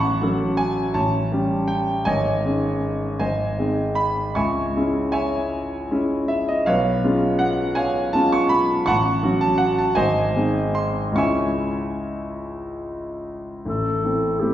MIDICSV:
0, 0, Header, 1, 3, 480
1, 0, Start_track
1, 0, Key_signature, 4, "minor"
1, 0, Tempo, 745342
1, 1331, Time_signature, 6, 3, 24, 8
1, 1818, Tempo, 769231
1, 4218, Tempo, 741656
1, 6618, Tempo, 820793
1, 8538, Tempo, 753769
1, 9097, End_track
2, 0, Start_track
2, 0, Title_t, "Clarinet"
2, 0, Program_c, 0, 71
2, 8547, Note_on_c, 0, 69, 61
2, 9007, Note_on_c, 0, 67, 52
2, 9017, Note_off_c, 0, 69, 0
2, 9097, Note_off_c, 0, 67, 0
2, 9097, End_track
3, 0, Start_track
3, 0, Title_t, "Grand piano"
3, 0, Program_c, 1, 0
3, 0, Note_on_c, 1, 33, 53
3, 0, Note_on_c, 1, 78, 66
3, 0, Note_on_c, 1, 81, 69
3, 0, Note_on_c, 1, 85, 83
3, 4, Control_c, 1, 64, 127
3, 132, Note_off_c, 1, 33, 0
3, 140, Note_on_c, 1, 54, 39
3, 145, Note_on_c, 1, 61, 39
3, 147, Note_on_c, 1, 69, 41
3, 351, Note_off_c, 1, 78, 0
3, 352, Note_off_c, 1, 81, 0
3, 368, Note_on_c, 1, 80, 78
3, 374, Note_off_c, 1, 85, 0
3, 586, Note_off_c, 1, 54, 0
3, 589, Note_off_c, 1, 61, 0
3, 590, Note_off_c, 1, 69, 0
3, 606, Note_on_c, 1, 81, 65
3, 608, Note_off_c, 1, 80, 0
3, 609, Note_on_c, 1, 73, 47
3, 610, Note_on_c, 1, 33, 46
3, 620, Control_c, 1, 64, 0
3, 705, Control_c, 1, 64, 127
3, 841, Note_off_c, 1, 33, 0
3, 850, Note_on_c, 1, 55, 40
3, 853, Note_on_c, 1, 61, 37
3, 855, Note_on_c, 1, 67, 45
3, 1063, Note_off_c, 1, 73, 0
3, 1079, Note_on_c, 1, 79, 78
3, 1087, Note_off_c, 1, 81, 0
3, 1306, Note_off_c, 1, 55, 0
3, 1308, Note_off_c, 1, 61, 0
3, 1309, Note_off_c, 1, 67, 0
3, 1321, Note_on_c, 1, 80, 81
3, 1326, Note_off_c, 1, 79, 0
3, 1329, Note_on_c, 1, 32, 53
3, 1331, Note_on_c, 1, 73, 59
3, 1332, Note_on_c, 1, 75, 59
3, 1343, Control_c, 1, 64, 0
3, 1447, Control_c, 1, 64, 127
3, 1565, Note_off_c, 1, 32, 0
3, 1576, Note_on_c, 1, 56, 35
3, 1581, Note_on_c, 1, 61, 33
3, 1584, Note_on_c, 1, 63, 36
3, 2033, Note_off_c, 1, 56, 0
3, 2033, Note_off_c, 1, 73, 0
3, 2033, Note_off_c, 1, 75, 0
3, 2036, Note_off_c, 1, 61, 0
3, 2038, Note_off_c, 1, 63, 0
3, 2040, Note_off_c, 1, 80, 0
3, 2050, Note_on_c, 1, 80, 60
3, 2054, Note_on_c, 1, 72, 45
3, 2055, Note_on_c, 1, 32, 45
3, 2057, Note_on_c, 1, 75, 50
3, 2068, Control_c, 1, 64, 0
3, 2186, Control_c, 1, 64, 127
3, 2287, Note_off_c, 1, 32, 0
3, 2296, Note_on_c, 1, 56, 38
3, 2298, Note_on_c, 1, 63, 37
3, 2299, Note_on_c, 1, 60, 36
3, 2512, Note_off_c, 1, 72, 0
3, 2513, Note_off_c, 1, 75, 0
3, 2523, Note_on_c, 1, 83, 74
3, 2535, Note_off_c, 1, 80, 0
3, 2758, Note_off_c, 1, 56, 0
3, 2759, Note_off_c, 1, 60, 0
3, 2759, Note_off_c, 1, 63, 0
3, 2772, Note_on_c, 1, 85, 68
3, 2775, Note_off_c, 1, 83, 0
3, 2776, Note_on_c, 1, 37, 50
3, 2777, Note_on_c, 1, 80, 58
3, 2778, Note_on_c, 1, 76, 49
3, 2793, Control_c, 1, 64, 0
3, 2907, Control_c, 1, 64, 127
3, 3014, Note_off_c, 1, 37, 0
3, 3028, Note_on_c, 1, 56, 37
3, 3030, Note_on_c, 1, 64, 37
3, 3032, Note_on_c, 1, 61, 35
3, 3239, Note_off_c, 1, 76, 0
3, 3239, Note_off_c, 1, 80, 0
3, 3251, Note_on_c, 1, 80, 74
3, 3257, Note_on_c, 1, 76, 51
3, 3260, Note_on_c, 1, 73, 57
3, 3261, Note_off_c, 1, 85, 0
3, 3724, Note_off_c, 1, 56, 0
3, 3725, Note_off_c, 1, 64, 0
3, 3726, Note_off_c, 1, 61, 0
3, 3745, Note_on_c, 1, 56, 40
3, 3745, Note_on_c, 1, 61, 37
3, 3751, Note_on_c, 1, 64, 40
3, 3955, Note_off_c, 1, 76, 0
3, 3956, Note_off_c, 1, 73, 0
3, 3976, Note_off_c, 1, 80, 0
3, 3976, Note_on_c, 1, 76, 72
3, 4098, Note_off_c, 1, 76, 0
3, 4103, Note_on_c, 1, 75, 67
3, 4192, Note_off_c, 1, 56, 0
3, 4192, Note_off_c, 1, 61, 0
3, 4195, Note_off_c, 1, 64, 0
3, 4213, Note_on_c, 1, 77, 73
3, 4218, Note_on_c, 1, 35, 49
3, 4219, Note_off_c, 1, 75, 0
3, 4219, Note_on_c, 1, 73, 60
3, 4222, Note_on_c, 1, 71, 59
3, 4228, Control_c, 1, 64, 0
3, 4343, Control_c, 1, 64, 127
3, 4449, Note_off_c, 1, 35, 0
3, 4457, Note_on_c, 1, 56, 38
3, 4459, Note_on_c, 1, 61, 36
3, 4461, Note_on_c, 1, 65, 38
3, 4665, Note_off_c, 1, 73, 0
3, 4666, Note_off_c, 1, 71, 0
3, 4683, Note_on_c, 1, 78, 78
3, 4687, Note_off_c, 1, 77, 0
3, 4918, Note_on_c, 1, 80, 76
3, 4924, Note_off_c, 1, 78, 0
3, 4925, Note_on_c, 1, 73, 55
3, 4930, Note_on_c, 1, 77, 55
3, 5143, Note_off_c, 1, 56, 0
3, 5144, Note_off_c, 1, 61, 0
3, 5145, Note_off_c, 1, 65, 0
3, 5150, Note_off_c, 1, 73, 0
3, 5153, Note_off_c, 1, 77, 0
3, 5163, Note_on_c, 1, 81, 86
3, 5164, Note_off_c, 1, 80, 0
3, 5170, Note_on_c, 1, 56, 43
3, 5170, Note_on_c, 1, 61, 41
3, 5171, Note_on_c, 1, 65, 46
3, 5286, Note_off_c, 1, 81, 0
3, 5289, Note_on_c, 1, 85, 87
3, 5398, Note_on_c, 1, 83, 83
3, 5409, Note_off_c, 1, 85, 0
3, 5621, Note_off_c, 1, 61, 0
3, 5622, Note_off_c, 1, 56, 0
3, 5622, Note_off_c, 1, 65, 0
3, 5634, Note_on_c, 1, 85, 91
3, 5641, Note_off_c, 1, 83, 0
3, 5643, Note_on_c, 1, 33, 55
3, 5644, Note_on_c, 1, 78, 78
3, 5645, Note_on_c, 1, 81, 72
3, 5657, Control_c, 1, 64, 0
3, 5772, Control_c, 1, 64, 127
3, 5874, Note_on_c, 1, 54, 42
3, 5876, Note_off_c, 1, 33, 0
3, 5879, Note_on_c, 1, 61, 39
3, 5880, Note_on_c, 1, 66, 45
3, 5978, Note_off_c, 1, 78, 0
3, 5978, Note_off_c, 1, 81, 0
3, 5991, Note_on_c, 1, 81, 78
3, 5998, Note_off_c, 1, 85, 0
3, 6100, Note_on_c, 1, 78, 76
3, 6117, Note_off_c, 1, 81, 0
3, 6233, Note_off_c, 1, 78, 0
3, 6234, Note_on_c, 1, 81, 74
3, 6337, Note_off_c, 1, 54, 0
3, 6339, Note_off_c, 1, 61, 0
3, 6339, Note_off_c, 1, 66, 0
3, 6342, Note_on_c, 1, 80, 77
3, 6350, Note_on_c, 1, 32, 53
3, 6350, Note_on_c, 1, 72, 67
3, 6350, Note_on_c, 1, 75, 60
3, 6362, Note_off_c, 1, 81, 0
3, 6381, Control_c, 1, 64, 0
3, 6476, Control_c, 1, 64, 127
3, 6602, Note_off_c, 1, 32, 0
3, 6606, Note_on_c, 1, 56, 41
3, 6609, Note_on_c, 1, 60, 42
3, 6613, Note_on_c, 1, 63, 46
3, 6819, Note_off_c, 1, 72, 0
3, 6819, Note_off_c, 1, 75, 0
3, 6834, Note_on_c, 1, 84, 79
3, 6839, Note_off_c, 1, 80, 0
3, 7051, Note_off_c, 1, 56, 0
3, 7053, Note_on_c, 1, 37, 43
3, 7060, Note_on_c, 1, 56, 36
3, 7065, Note_off_c, 1, 60, 0
3, 7066, Note_off_c, 1, 63, 0
3, 7067, Note_on_c, 1, 61, 40
3, 7074, Note_on_c, 1, 85, 72
3, 7075, Note_on_c, 1, 64, 39
3, 7084, Note_off_c, 1, 84, 0
3, 7084, Note_on_c, 1, 76, 63
3, 7085, Note_on_c, 1, 80, 58
3, 7102, Control_c, 1, 64, 0
3, 7217, Control_c, 1, 64, 127
3, 8276, Note_off_c, 1, 76, 0
3, 8276, Note_off_c, 1, 80, 0
3, 8294, Note_off_c, 1, 85, 0
3, 8495, Note_off_c, 1, 37, 0
3, 8499, Note_off_c, 1, 56, 0
3, 8502, Note_off_c, 1, 61, 0
3, 8507, Note_off_c, 1, 64, 0
3, 8535, Note_on_c, 1, 33, 39
3, 8551, Control_c, 1, 64, 0
3, 8640, Control_c, 1, 64, 127
3, 8769, Note_off_c, 1, 33, 0
3, 8779, Note_on_c, 1, 57, 27
3, 8782, Note_on_c, 1, 64, 27
3, 8784, Note_on_c, 1, 60, 25
3, 8994, Note_off_c, 1, 57, 0
3, 8997, Note_off_c, 1, 60, 0
3, 8997, Note_off_c, 1, 64, 0
3, 9016, Note_on_c, 1, 57, 29
3, 9016, Note_on_c, 1, 60, 28
3, 9020, Note_on_c, 1, 64, 33
3, 9097, Note_off_c, 1, 57, 0
3, 9097, Note_off_c, 1, 60, 0
3, 9097, Note_off_c, 1, 64, 0
3, 9097, End_track
0, 0, End_of_file